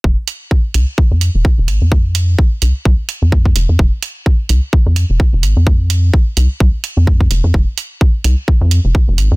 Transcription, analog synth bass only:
X:1
M:4/4
L:1/16
Q:"Swing 16ths" 1/4=128
K:Fm
V:1 name="Analog synth bass" clef=bass
F,,, z4 z C,, z2 F,,2 F,,, z F,,, A,,, F,,- | F,,4 z2 C,, z C,, z2 F,,3 F,,, F,, | F,,, z4 z C,, z2 F,,2 F,,, z F,,, A,,, F,,- | F,,4 z2 C,, z C,, z2 F,,3 F,,, F,, |
F,,, z4 z C,, z2 F,,2 F,,, z F,,, A,,, F,, |]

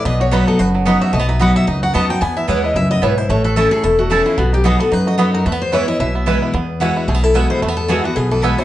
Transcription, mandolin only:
X:1
M:4/4
L:1/8
Q:"Swing" 1/4=222
K:E
V:1 name="Mandolin"
z2 [B,Fdb] z3 [B,Fdb] z | z2 [B,Fdb] z3 [B,Fdb] z | z2 [B,EBg] z3 [B,EBg] z | z2 [A,Eca] z3 [A,Eca] z |
z2 [B,Fdb] z3 [B,Fdb] z | z2 [B,EBg] z3 [B,EBg] z | z2 [B,Feg] z3 [B,Feg] z | z2 [B,Feg] z3 [B,Feg] z |]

